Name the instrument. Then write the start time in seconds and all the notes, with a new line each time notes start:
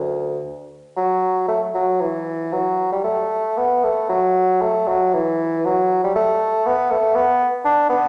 bassoon
Already playing: D2
0.97 F#3
1.48 A3
1.74 F#3
2.01 E3
2.52 F#3
2.92 G3
3.04 A3
3.57 B3
3.84 A3
4.09 F#3
4.62 A3
4.88 F#3
5.13 E3
5.65 F#3
6.04 G3
6.15 A3
6.66 B3
6.91 A3
7.15 B3
7.65 D4
7.89 B3